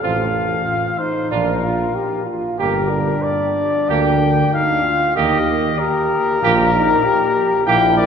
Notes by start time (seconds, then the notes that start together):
0.01 A1 C4 F4 A4 F5
0.65 F4
0.98 D#4 C5
1.31 A#1 D4 F4 A#4
1.63 F4
1.95 G4
2.26 F4
2.59 G1 A#3 G4 A#4
2.90 D4
3.22 D5
3.89 D2 A#3 G4 G5
4.53 D#4 F5
4.84 F4
5.15 D#2 A#3 G4 D#5
5.79 G4 A#4
6.42 A#1 A#3 F4 G4
6.74 D#4
7.04 G4
7.67 A#1 A#3 E4 G4 G5
7.97 D5